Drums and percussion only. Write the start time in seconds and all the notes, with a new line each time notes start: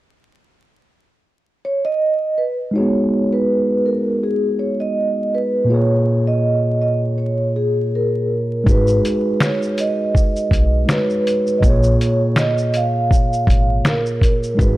8.66 kick, shaker
8.87 shaker
9.05 closed hi-hat, shaker
9.40 finger snap, snare, shaker
9.62 shaker
9.78 closed hi-hat, shaker
10.15 kick, shaker
10.36 shaker
10.51 kick, closed hi-hat, shaker
10.89 finger snap, snare, shaker
11.10 shaker
11.27 closed hi-hat, shaker
11.47 shaker
11.62 kick, shaker
11.83 shaker
12.01 closed hi-hat, shaker
12.36 finger snap, snare, shaker
12.58 shaker
12.74 closed hi-hat, shaker
13.11 kick, shaker
13.33 shaker
13.47 kick, closed hi-hat, shaker
13.85 finger snap, snare, shaker
14.06 shaker
14.21 kick, closed hi-hat, shaker
14.43 shaker
14.59 kick, shaker